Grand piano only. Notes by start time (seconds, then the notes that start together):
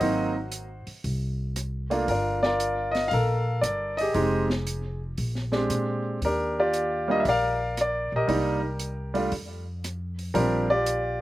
Already playing: F#4 C5 D#5
0.01 F#3 A#3 C4 D#4
1.90 A3 A#3 D4 F4
2.09 D4 F4 A#4
2.43 F4 A#4 D5
2.91 D#5
3.08 F5
3.13 A4 A#4
3.61 D5
3.97 G4 G#4 D#5
4.14 G#3 C4 D#4 G4
5.52 G#3 C4 D4 G4
6.25 D4 G4 A#4
6.59 F4 G4 D5
7.08 G3 A#3 D4 F4 D#5
7.20 E5
7.28 A#4 D5 F5
7.81 D5
8.16 G4 A#4 D#5
8.28 G3 A#3 D4 D#4
9.14 G3 A3 D4 F4
10.34 F3 G3 C4 D4 G4 A#4
10.70 F4 G4 D5